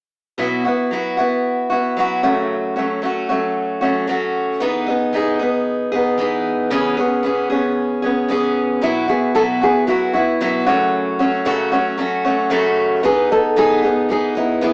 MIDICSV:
0, 0, Header, 1, 3, 480
1, 0, Start_track
1, 0, Tempo, 526778
1, 357, Time_signature, 4, 2, 24, 8
1, 13424, End_track
2, 0, Start_track
2, 0, Title_t, "Nylon-string guitar"
2, 0, Program_c, 0, 24
2, 8287, Note_on_c, 0, 68, 74
2, 8516, Note_off_c, 0, 68, 0
2, 8520, Note_on_c, 0, 69, 75
2, 8585, Note_off_c, 0, 69, 0
2, 8778, Note_on_c, 0, 68, 79
2, 8997, Note_off_c, 0, 68, 0
2, 12137, Note_on_c, 0, 69, 87
2, 12352, Note_off_c, 0, 69, 0
2, 13092, Note_on_c, 0, 64, 67
2, 13326, Note_off_c, 0, 64, 0
2, 13337, Note_on_c, 0, 64, 64
2, 13424, Note_off_c, 0, 64, 0
2, 13424, End_track
3, 0, Start_track
3, 0, Title_t, "Steel-string acoustic guitar"
3, 0, Program_c, 1, 25
3, 345, Note_on_c, 1, 47, 70
3, 352, Note_on_c, 1, 54, 64
3, 356, Note_on_c, 1, 59, 60
3, 359, Note_on_c, 1, 64, 64
3, 364, Note_on_c, 1, 66, 64
3, 577, Note_off_c, 1, 66, 0
3, 588, Note_on_c, 1, 66, 45
3, 591, Note_off_c, 1, 47, 0
3, 594, Note_off_c, 1, 64, 0
3, 595, Note_off_c, 1, 54, 0
3, 597, Note_off_c, 1, 59, 0
3, 605, Note_on_c, 1, 64, 42
3, 618, Note_on_c, 1, 59, 37
3, 827, Note_on_c, 1, 54, 46
3, 831, Note_off_c, 1, 59, 0
3, 833, Note_off_c, 1, 66, 0
3, 837, Note_off_c, 1, 64, 0
3, 842, Note_on_c, 1, 59, 48
3, 848, Note_on_c, 1, 64, 61
3, 855, Note_on_c, 1, 66, 60
3, 1055, Note_off_c, 1, 66, 0
3, 1066, Note_on_c, 1, 66, 42
3, 1070, Note_off_c, 1, 64, 0
3, 1072, Note_off_c, 1, 54, 0
3, 1080, Note_off_c, 1, 59, 0
3, 1081, Note_on_c, 1, 64, 40
3, 1094, Note_on_c, 1, 59, 36
3, 1543, Note_off_c, 1, 66, 0
3, 1547, Note_on_c, 1, 66, 47
3, 1554, Note_off_c, 1, 64, 0
3, 1565, Note_on_c, 1, 64, 43
3, 1566, Note_off_c, 1, 59, 0
3, 1577, Note_on_c, 1, 59, 39
3, 1791, Note_on_c, 1, 54, 58
3, 1792, Note_off_c, 1, 59, 0
3, 1793, Note_off_c, 1, 66, 0
3, 1801, Note_off_c, 1, 64, 0
3, 1803, Note_on_c, 1, 59, 54
3, 1812, Note_on_c, 1, 64, 58
3, 1820, Note_on_c, 1, 66, 61
3, 2021, Note_off_c, 1, 66, 0
3, 2031, Note_off_c, 1, 54, 0
3, 2032, Note_off_c, 1, 64, 0
3, 2032, Note_on_c, 1, 66, 59
3, 2035, Note_off_c, 1, 59, 0
3, 2035, Note_on_c, 1, 61, 51
3, 2039, Note_on_c, 1, 57, 55
3, 2042, Note_on_c, 1, 54, 44
3, 2049, Note_on_c, 1, 49, 47
3, 2050, Note_on_c, 1, 42, 44
3, 2502, Note_off_c, 1, 66, 0
3, 2510, Note_off_c, 1, 61, 0
3, 2513, Note_on_c, 1, 66, 44
3, 2519, Note_off_c, 1, 57, 0
3, 2520, Note_off_c, 1, 54, 0
3, 2521, Note_on_c, 1, 61, 43
3, 2524, Note_off_c, 1, 42, 0
3, 2524, Note_off_c, 1, 49, 0
3, 2535, Note_on_c, 1, 57, 40
3, 2541, Note_on_c, 1, 54, 38
3, 2739, Note_off_c, 1, 54, 0
3, 2750, Note_on_c, 1, 54, 50
3, 2751, Note_off_c, 1, 57, 0
3, 2756, Note_off_c, 1, 66, 0
3, 2760, Note_off_c, 1, 61, 0
3, 2762, Note_on_c, 1, 57, 55
3, 2772, Note_on_c, 1, 61, 51
3, 2782, Note_on_c, 1, 66, 55
3, 2986, Note_off_c, 1, 66, 0
3, 2993, Note_off_c, 1, 61, 0
3, 2994, Note_off_c, 1, 54, 0
3, 2997, Note_on_c, 1, 66, 46
3, 3000, Note_off_c, 1, 57, 0
3, 3004, Note_on_c, 1, 61, 45
3, 3018, Note_on_c, 1, 57, 42
3, 3025, Note_on_c, 1, 54, 34
3, 3461, Note_off_c, 1, 66, 0
3, 3472, Note_off_c, 1, 61, 0
3, 3472, Note_on_c, 1, 66, 47
3, 3479, Note_off_c, 1, 57, 0
3, 3483, Note_on_c, 1, 61, 47
3, 3488, Note_off_c, 1, 54, 0
3, 3490, Note_on_c, 1, 57, 40
3, 3499, Note_on_c, 1, 54, 38
3, 3702, Note_off_c, 1, 54, 0
3, 3713, Note_on_c, 1, 54, 57
3, 3715, Note_off_c, 1, 57, 0
3, 3715, Note_off_c, 1, 66, 0
3, 3721, Note_off_c, 1, 61, 0
3, 3726, Note_on_c, 1, 57, 59
3, 3736, Note_on_c, 1, 61, 63
3, 3744, Note_on_c, 1, 66, 56
3, 4190, Note_off_c, 1, 54, 0
3, 4194, Note_on_c, 1, 52, 66
3, 4202, Note_off_c, 1, 57, 0
3, 4205, Note_on_c, 1, 59, 73
3, 4206, Note_off_c, 1, 61, 0
3, 4209, Note_on_c, 1, 63, 72
3, 4212, Note_off_c, 1, 66, 0
3, 4217, Note_on_c, 1, 68, 74
3, 4422, Note_off_c, 1, 68, 0
3, 4433, Note_on_c, 1, 68, 47
3, 4437, Note_off_c, 1, 52, 0
3, 4438, Note_off_c, 1, 63, 0
3, 4443, Note_off_c, 1, 59, 0
3, 4448, Note_on_c, 1, 63, 51
3, 4463, Note_on_c, 1, 59, 38
3, 4671, Note_off_c, 1, 59, 0
3, 4671, Note_on_c, 1, 52, 55
3, 4676, Note_off_c, 1, 68, 0
3, 4681, Note_off_c, 1, 63, 0
3, 4682, Note_on_c, 1, 59, 51
3, 4692, Note_on_c, 1, 63, 58
3, 4703, Note_on_c, 1, 68, 63
3, 4903, Note_off_c, 1, 68, 0
3, 4914, Note_on_c, 1, 68, 52
3, 4916, Note_off_c, 1, 52, 0
3, 4920, Note_off_c, 1, 63, 0
3, 4921, Note_off_c, 1, 59, 0
3, 4931, Note_on_c, 1, 63, 42
3, 4944, Note_on_c, 1, 59, 37
3, 5389, Note_off_c, 1, 68, 0
3, 5393, Note_on_c, 1, 68, 51
3, 5397, Note_off_c, 1, 63, 0
3, 5408, Note_on_c, 1, 63, 43
3, 5420, Note_off_c, 1, 59, 0
3, 5423, Note_on_c, 1, 59, 43
3, 5627, Note_off_c, 1, 59, 0
3, 5627, Note_on_c, 1, 52, 56
3, 5636, Note_off_c, 1, 63, 0
3, 5637, Note_off_c, 1, 68, 0
3, 5638, Note_on_c, 1, 59, 63
3, 5647, Note_on_c, 1, 63, 54
3, 5659, Note_on_c, 1, 68, 62
3, 6108, Note_on_c, 1, 49, 74
3, 6110, Note_off_c, 1, 52, 0
3, 6113, Note_off_c, 1, 59, 0
3, 6114, Note_on_c, 1, 52, 76
3, 6117, Note_on_c, 1, 59, 70
3, 6120, Note_off_c, 1, 63, 0
3, 6124, Note_on_c, 1, 61, 85
3, 6126, Note_off_c, 1, 68, 0
3, 6130, Note_on_c, 1, 68, 74
3, 6340, Note_off_c, 1, 68, 0
3, 6351, Note_on_c, 1, 68, 50
3, 6354, Note_off_c, 1, 49, 0
3, 6355, Note_off_c, 1, 61, 0
3, 6357, Note_off_c, 1, 52, 0
3, 6358, Note_off_c, 1, 59, 0
3, 6365, Note_on_c, 1, 61, 43
3, 6378, Note_on_c, 1, 59, 43
3, 6586, Note_on_c, 1, 52, 52
3, 6588, Note_off_c, 1, 59, 0
3, 6595, Note_off_c, 1, 68, 0
3, 6599, Note_off_c, 1, 61, 0
3, 6599, Note_on_c, 1, 59, 55
3, 6610, Note_on_c, 1, 61, 57
3, 6617, Note_on_c, 1, 68, 61
3, 6820, Note_off_c, 1, 68, 0
3, 6831, Note_on_c, 1, 68, 50
3, 6833, Note_off_c, 1, 52, 0
3, 6838, Note_off_c, 1, 61, 0
3, 6840, Note_off_c, 1, 59, 0
3, 6849, Note_on_c, 1, 61, 47
3, 6860, Note_on_c, 1, 59, 37
3, 7299, Note_off_c, 1, 68, 0
3, 7310, Note_on_c, 1, 68, 51
3, 7313, Note_off_c, 1, 61, 0
3, 7324, Note_on_c, 1, 61, 40
3, 7335, Note_off_c, 1, 59, 0
3, 7338, Note_on_c, 1, 59, 39
3, 7547, Note_on_c, 1, 52, 55
3, 7548, Note_off_c, 1, 59, 0
3, 7555, Note_off_c, 1, 68, 0
3, 7557, Note_off_c, 1, 61, 0
3, 7559, Note_on_c, 1, 59, 54
3, 7568, Note_on_c, 1, 61, 63
3, 7576, Note_on_c, 1, 68, 66
3, 8032, Note_on_c, 1, 47, 67
3, 8034, Note_off_c, 1, 52, 0
3, 8034, Note_off_c, 1, 59, 0
3, 8037, Note_on_c, 1, 54, 60
3, 8044, Note_off_c, 1, 61, 0
3, 8045, Note_on_c, 1, 59, 70
3, 8048, Note_off_c, 1, 68, 0
3, 8051, Note_on_c, 1, 64, 68
3, 8052, Note_on_c, 1, 66, 75
3, 8260, Note_off_c, 1, 66, 0
3, 8271, Note_on_c, 1, 66, 46
3, 8275, Note_off_c, 1, 64, 0
3, 8276, Note_off_c, 1, 47, 0
3, 8279, Note_off_c, 1, 54, 0
3, 8283, Note_off_c, 1, 59, 0
3, 8286, Note_on_c, 1, 64, 37
3, 8298, Note_on_c, 1, 59, 34
3, 8514, Note_off_c, 1, 59, 0
3, 8515, Note_on_c, 1, 47, 58
3, 8516, Note_off_c, 1, 66, 0
3, 8519, Note_off_c, 1, 64, 0
3, 8521, Note_on_c, 1, 54, 59
3, 8525, Note_on_c, 1, 59, 69
3, 8530, Note_on_c, 1, 64, 75
3, 8532, Note_on_c, 1, 66, 64
3, 8749, Note_off_c, 1, 66, 0
3, 8758, Note_off_c, 1, 47, 0
3, 8760, Note_on_c, 1, 66, 44
3, 8761, Note_off_c, 1, 54, 0
3, 8762, Note_off_c, 1, 64, 0
3, 8763, Note_off_c, 1, 59, 0
3, 8773, Note_on_c, 1, 64, 39
3, 8789, Note_on_c, 1, 59, 38
3, 8990, Note_off_c, 1, 59, 0
3, 8992, Note_on_c, 1, 54, 46
3, 9000, Note_off_c, 1, 66, 0
3, 9001, Note_off_c, 1, 64, 0
3, 9001, Note_on_c, 1, 59, 46
3, 9012, Note_on_c, 1, 64, 53
3, 9022, Note_on_c, 1, 66, 46
3, 9222, Note_off_c, 1, 66, 0
3, 9233, Note_on_c, 1, 66, 44
3, 9236, Note_off_c, 1, 54, 0
3, 9240, Note_off_c, 1, 64, 0
3, 9241, Note_off_c, 1, 59, 0
3, 9251, Note_on_c, 1, 64, 40
3, 9265, Note_on_c, 1, 59, 36
3, 9477, Note_off_c, 1, 66, 0
3, 9480, Note_off_c, 1, 59, 0
3, 9481, Note_on_c, 1, 47, 65
3, 9486, Note_off_c, 1, 64, 0
3, 9486, Note_on_c, 1, 54, 64
3, 9491, Note_on_c, 1, 59, 67
3, 9495, Note_on_c, 1, 64, 67
3, 9499, Note_on_c, 1, 66, 77
3, 9706, Note_off_c, 1, 66, 0
3, 9717, Note_on_c, 1, 66, 58
3, 9719, Note_off_c, 1, 64, 0
3, 9721, Note_off_c, 1, 47, 0
3, 9722, Note_on_c, 1, 61, 51
3, 9723, Note_off_c, 1, 54, 0
3, 9723, Note_off_c, 1, 59, 0
3, 9726, Note_on_c, 1, 57, 46
3, 9733, Note_on_c, 1, 54, 47
3, 9734, Note_on_c, 1, 49, 43
3, 9738, Note_on_c, 1, 42, 40
3, 10187, Note_off_c, 1, 66, 0
3, 10197, Note_off_c, 1, 61, 0
3, 10198, Note_on_c, 1, 66, 50
3, 10203, Note_off_c, 1, 57, 0
3, 10207, Note_off_c, 1, 49, 0
3, 10207, Note_off_c, 1, 54, 0
3, 10208, Note_on_c, 1, 61, 49
3, 10209, Note_off_c, 1, 42, 0
3, 10218, Note_on_c, 1, 57, 43
3, 10227, Note_on_c, 1, 54, 42
3, 10431, Note_off_c, 1, 54, 0
3, 10433, Note_off_c, 1, 57, 0
3, 10434, Note_on_c, 1, 42, 68
3, 10436, Note_off_c, 1, 61, 0
3, 10439, Note_off_c, 1, 66, 0
3, 10440, Note_on_c, 1, 49, 65
3, 10442, Note_on_c, 1, 54, 72
3, 10444, Note_on_c, 1, 57, 74
3, 10447, Note_on_c, 1, 61, 73
3, 10450, Note_on_c, 1, 66, 75
3, 10666, Note_off_c, 1, 66, 0
3, 10677, Note_off_c, 1, 42, 0
3, 10677, Note_on_c, 1, 66, 54
3, 10679, Note_off_c, 1, 61, 0
3, 10680, Note_off_c, 1, 49, 0
3, 10681, Note_off_c, 1, 54, 0
3, 10682, Note_off_c, 1, 57, 0
3, 10690, Note_on_c, 1, 61, 50
3, 10699, Note_on_c, 1, 57, 45
3, 10705, Note_on_c, 1, 54, 41
3, 10901, Note_off_c, 1, 54, 0
3, 10911, Note_off_c, 1, 57, 0
3, 10912, Note_on_c, 1, 54, 51
3, 10919, Note_off_c, 1, 66, 0
3, 10922, Note_on_c, 1, 57, 56
3, 10925, Note_off_c, 1, 61, 0
3, 10935, Note_on_c, 1, 61, 56
3, 10940, Note_on_c, 1, 66, 63
3, 11147, Note_off_c, 1, 66, 0
3, 11156, Note_off_c, 1, 54, 0
3, 11156, Note_off_c, 1, 61, 0
3, 11158, Note_on_c, 1, 66, 52
3, 11161, Note_off_c, 1, 57, 0
3, 11167, Note_on_c, 1, 61, 51
3, 11177, Note_on_c, 1, 57, 42
3, 11186, Note_on_c, 1, 54, 39
3, 11388, Note_off_c, 1, 54, 0
3, 11389, Note_on_c, 1, 42, 74
3, 11390, Note_off_c, 1, 57, 0
3, 11394, Note_on_c, 1, 49, 77
3, 11397, Note_off_c, 1, 61, 0
3, 11399, Note_off_c, 1, 66, 0
3, 11399, Note_on_c, 1, 54, 73
3, 11401, Note_on_c, 1, 57, 84
3, 11408, Note_on_c, 1, 61, 78
3, 11413, Note_on_c, 1, 66, 74
3, 11870, Note_off_c, 1, 54, 0
3, 11874, Note_on_c, 1, 52, 62
3, 11875, Note_off_c, 1, 42, 0
3, 11876, Note_off_c, 1, 57, 0
3, 11877, Note_off_c, 1, 49, 0
3, 11879, Note_on_c, 1, 59, 67
3, 11883, Note_off_c, 1, 61, 0
3, 11887, Note_off_c, 1, 66, 0
3, 11887, Note_on_c, 1, 63, 71
3, 11894, Note_on_c, 1, 68, 74
3, 12106, Note_off_c, 1, 68, 0
3, 12117, Note_off_c, 1, 52, 0
3, 12117, Note_on_c, 1, 68, 41
3, 12120, Note_off_c, 1, 59, 0
3, 12121, Note_off_c, 1, 63, 0
3, 12132, Note_on_c, 1, 63, 36
3, 12145, Note_on_c, 1, 59, 39
3, 12354, Note_off_c, 1, 59, 0
3, 12359, Note_off_c, 1, 68, 0
3, 12359, Note_on_c, 1, 52, 67
3, 12360, Note_off_c, 1, 63, 0
3, 12365, Note_on_c, 1, 59, 66
3, 12371, Note_on_c, 1, 63, 74
3, 12379, Note_on_c, 1, 68, 75
3, 12584, Note_off_c, 1, 68, 0
3, 12595, Note_on_c, 1, 68, 47
3, 12599, Note_off_c, 1, 52, 0
3, 12603, Note_off_c, 1, 59, 0
3, 12603, Note_off_c, 1, 63, 0
3, 12614, Note_on_c, 1, 63, 44
3, 12625, Note_on_c, 1, 59, 41
3, 12835, Note_on_c, 1, 52, 44
3, 12836, Note_off_c, 1, 59, 0
3, 12838, Note_off_c, 1, 68, 0
3, 12846, Note_on_c, 1, 59, 54
3, 12847, Note_off_c, 1, 63, 0
3, 12859, Note_on_c, 1, 63, 50
3, 12868, Note_on_c, 1, 68, 59
3, 13063, Note_off_c, 1, 68, 0
3, 13074, Note_on_c, 1, 68, 40
3, 13077, Note_off_c, 1, 52, 0
3, 13081, Note_off_c, 1, 63, 0
3, 13083, Note_off_c, 1, 59, 0
3, 13092, Note_on_c, 1, 63, 40
3, 13103, Note_on_c, 1, 59, 34
3, 13314, Note_off_c, 1, 59, 0
3, 13315, Note_on_c, 1, 52, 70
3, 13317, Note_off_c, 1, 68, 0
3, 13325, Note_on_c, 1, 59, 73
3, 13326, Note_off_c, 1, 63, 0
3, 13338, Note_on_c, 1, 68, 73
3, 13424, Note_off_c, 1, 52, 0
3, 13424, Note_off_c, 1, 59, 0
3, 13424, Note_off_c, 1, 68, 0
3, 13424, End_track
0, 0, End_of_file